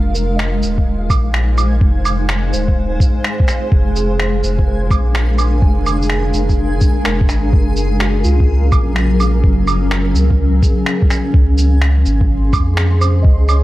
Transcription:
0.00 0.61 F1 medium
0.00 7.54 G#3 medium
0.00 13.63 G#4 medium
0.00 1.47 A#4 medium
0.00 13.63 F5 medium
0.00 13.63 G#5 medium
0.14 1.07 A#4 medium
0.14 shaker medium
0.35 3.73 D#4 medium
0.35 1.25 D#5 medium
0.35 finger snap medium
0.53 4.42 C5 medium
0.63 1.12 D#1 loud
0.63 shaker medium
0.78 kick medium
1.10 1.81 A#1 medium
1.10 kick loud
1.10 claves medium
1.10 shaker medium
1.34 finger snap loud
1.58 claves medium
1.58 shaker medium
1.81 2.52 F1 loud
1.81 kick loud
2.05 claves medium
2.05 shaker medium
2.29 finger snap loud
2.53 3.00 D#1 medium
2.53 3.45 C5 medium
2.53 shaker medium
2.68 kick medium
3.00 kick loud
3.00 shaker medium
3.24 finger snap loud
3.40 kick loud
3.48 finger snap medium
3.48 shaker medium
3.72 4.42 F1 loud
3.72 kick loud
3.96 4.88 G#4 medium
3.96 shaker medium
4.17 7.53 D4 medium
4.17 finger snap loud
4.41 4.92 F1 medium
4.41 12.21 A#4 medium
4.41 shaker medium
4.59 kick medium
4.67 5.59 A#4 medium
4.91 5.61 A#1 medium
4.91 kick loud
4.91 claves medium
4.91 shaker medium
5.15 finger snap loud
5.38 claves soft
5.38 shaker medium
5.62 6.33 F1 medium
5.62 kick loud
5.86 claves medium
5.86 shaker medium
6.02 shaker soft
6.10 finger snap loud
6.34 6.80 F1 medium
6.34 shaker soft
6.49 kick medium
6.49 shaker soft
6.81 kick loud
6.81 shaker medium
7.05 7.31 F1 medium
7.05 7.73 A#4 medium
7.05 finger snap loud
7.21 kick loud
7.29 7.52 G#1 medium
7.29 finger snap medium
7.29 shaker medium
7.53 8.24 F#1 loud
7.53 13.63 C#4 medium
7.53 kick loud
7.76 shaker medium
7.96 11.34 F#3 medium
7.96 finger snap loud
8.01 8.93 F#4 soft
8.24 8.74 C#2 medium
8.24 9.16 F4 medium
8.24 shaker soft
8.40 kick medium
8.72 9.43 A#1 medium
8.72 kick loud
8.72 claves medium
8.72 shaker soft
8.96 finger snap loud
9.20 claves soft
9.20 shaker medium
9.44 10.14 F#1 loud
9.44 kick loud
9.67 claves medium
9.67 shaker medium
9.91 10.83 A#4 medium
9.91 finger snap loud
10.15 10.61 C#2 loud
10.15 shaker medium
10.31 kick medium
10.63 11.54 G#4 medium
10.63 kick loud
10.63 shaker medium
10.86 finger snap loud
11.02 kick medium
11.10 finger snap medium
11.10 shaker medium
11.34 12.05 C#2 loud
11.34 kick loud
11.58 shaker medium
11.63 13.63 G#4 medium
11.73 13.63 C6 medium
11.82 finger snap loud
12.06 12.54 G#1 loud
12.06 shaker medium
12.21 kick medium
12.53 13.23 F2 medium
12.53 kick loud
12.53 claves medium
12.53 shaker medium
12.77 finger snap loud
13.01 13.63 C5 medium
13.01 claves medium
13.01 shaker medium
13.22 13.63 C#2 loud
13.22 13.63 D#5 medium
13.22 kick loud
13.49 13.63 C#5 medium
13.49 claves medium
13.49 shaker medium

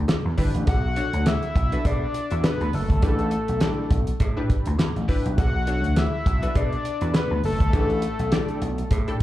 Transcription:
0.08 snare loud
0.08 closed hi-hat medium
0.08 cowbell medium
0.25 0.34 E2 medium
0.37 0.50 G1 medium
0.37 0.67 D4 loud
0.37 0.67 E4 medium
0.37 0.67 G4 medium
0.37 0.67 B4 loud
0.37 kick medium
0.37 open hi-hat medium
0.55 0.64 A1 medium
0.55 closed hi-hat soft
0.67 0.99 B1 loud
0.67 1.29 F#5 loud
0.67 kick loud
0.67 closed hi-hat medium
0.67 cowbell medium
0.96 1.33 D4 medium
0.96 1.33 F#4 medium
0.96 1.33 A4 medium
0.96 1.33 C#5 medium
0.96 closed hi-hat medium
1.13 1.34 D2 medium
1.13 closed hi-hat medium
1.26 1.88 E5 loud
1.26 snare loud
1.26 closed hi-hat loud
1.26 cowbell medium
1.43 closed hi-hat soft
1.56 1.76 B1 loud
1.56 kick loud
1.56 closed hi-hat medium
1.72 2.01 D4 medium
1.72 2.01 F#4 medium
1.72 2.01 A4 medium
1.72 2.01 B4 medium
1.72 closed hi-hat medium
1.85 2.06 B2 loud
1.85 2.44 D5 loud
1.85 kick loud
1.85 closed hi-hat medium
1.85 cowbell medium
2.14 closed hi-hat medium
2.31 2.40 E2 medium
2.31 2.66 D4 medium
2.31 2.66 F#4 medium
2.31 2.66 A4 medium
2.31 2.66 E5 medium
2.31 closed hi-hat soft
2.44 2.76 B4 medium
2.44 snare loud
2.44 closed hi-hat medium
2.44 cowbell medium
2.61 2.70 D2 loud
2.61 closed hi-hat soft
2.73 2.85 F#1 medium
2.73 4.51 A4 medium
2.73 open hi-hat medium
2.90 2.99 G1 loud
2.90 kick medium
2.90 closed hi-hat medium
3.02 3.35 A1 loud
3.02 3.31 D4 medium
3.02 3.32 E4 medium
3.02 3.32 G4 medium
3.02 3.32 B4 medium
3.02 kick loud
3.02 closed hi-hat medium
3.02 cowbell medium
3.19 closed hi-hat soft
3.31 closed hi-hat medium
3.48 3.69 B1 medium
3.48 closed hi-hat soft
3.60 3.98 D4 medium
3.60 3.98 E4 medium
3.60 3.98 G4 medium
3.60 3.98 D5 medium
3.60 snare loud
3.60 closed hi-hat medium
3.60 cowbell medium
3.90 4.11 B1 loud
3.90 kick loud
3.90 closed hi-hat medium
4.07 closed hi-hat medium
4.20 4.41 A2 medium
4.20 kick medium
4.20 closed hi-hat medium
4.20 cowbell medium
4.37 4.72 D4 loud
4.37 4.72 E4 medium
4.37 4.72 G4 medium
4.37 4.72 B4 loud
4.50 kick medium
4.50 closed hi-hat medium
4.66 4.76 D2 medium
4.66 closed hi-hat medium
4.79 4.91 E2 medium
4.79 snare loud
4.79 closed hi-hat medium
4.79 cowbell medium
4.96 5.05 A1 loud
4.96 closed hi-hat soft
5.08 5.37 D4 medium
5.08 5.37 E4 medium
5.08 5.37 G4 medium
5.08 5.37 B4 loud
5.08 kick medium
5.08 open hi-hat medium
5.26 5.34 B1 medium
5.26 closed hi-hat soft
5.38 5.84 B1 medium
5.38 5.99 F#5 loud
5.38 kick loud
5.38 closed hi-hat medium
5.38 cowbell medium
5.67 6.04 D4 medium
5.67 6.04 F#4 medium
5.67 6.04 A4 medium
5.67 6.04 C#5 medium
5.67 closed hi-hat medium
5.84 6.05 D2 medium
5.84 closed hi-hat soft
5.96 6.58 E5 loud
5.96 snare loud
5.96 closed hi-hat loud
5.96 cowbell medium
6.26 6.47 B1 medium
6.26 kick loud
6.26 closed hi-hat medium
6.42 6.71 D4 medium
6.42 6.71 F#4 medium
6.42 6.71 A4 medium
6.42 6.71 B4 medium
6.42 closed hi-hat medium
6.55 6.76 B2 loud
6.55 7.15 D5 loud
6.55 kick medium
6.55 closed hi-hat medium
6.55 cowbell medium
6.73 closed hi-hat soft
6.85 closed hi-hat medium
7.01 7.11 E2 medium
7.01 7.37 D4 medium
7.01 7.37 F#4 medium
7.01 7.37 A4 medium
7.01 7.37 B4 medium
7.01 closed hi-hat soft
7.14 7.43 B4 medium
7.14 snare loud
7.14 closed hi-hat medium
7.14 cowbell medium
7.31 7.40 D2 medium
7.44 7.55 F#1 medium
7.44 9.17 A4 loud
7.44 open hi-hat medium
7.60 7.69 G1 medium
7.60 kick loud
7.60 closed hi-hat medium
7.73 8.05 A1 loud
7.73 8.02 D4 medium
7.73 8.02 E4 medium
7.73 8.03 G4 medium
7.73 8.03 B4 medium
7.73 kick loud
7.73 closed hi-hat medium
7.73 cowbell medium
7.90 closed hi-hat soft
8.02 closed hi-hat medium
8.19 8.40 B1 medium
8.19 closed hi-hat medium
8.32 8.69 D4 loud
8.32 8.69 E4 medium
8.32 8.69 G4 medium
8.32 8.69 D5 loud
8.32 snare loud
8.32 closed hi-hat loud
8.32 cowbell medium
8.48 closed hi-hat soft
8.61 8.82 B1 loud
8.61 closed hi-hat medium
8.78 closed hi-hat soft
8.91 9.11 A2 loud
8.91 kick medium
8.91 closed hi-hat medium
8.91 cowbell medium
9.07 9.23 D4 medium
9.07 9.23 E4 medium
9.07 9.23 G4 medium
9.07 9.23 A4 loud
9.07 closed hi-hat soft

